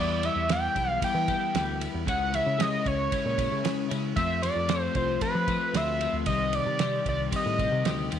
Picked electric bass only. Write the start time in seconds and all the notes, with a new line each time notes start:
Already playing: E2
0.35 E2
0.76 B1
1.14 E3
1.54 D2
1.94 E2
2.08 C#2
2.46 C#3
2.86 C#2
3.26 A#2
3.52 C#3
3.91 C#3
4.17 F2
4.56 F2
4.95 C2
5.35 F3
5.73 D2
6.13 D2
6.27 C2
6.66 C3
7.06 C2
7.46 A2
7.72 C3
7.86 D2
8.13 D#2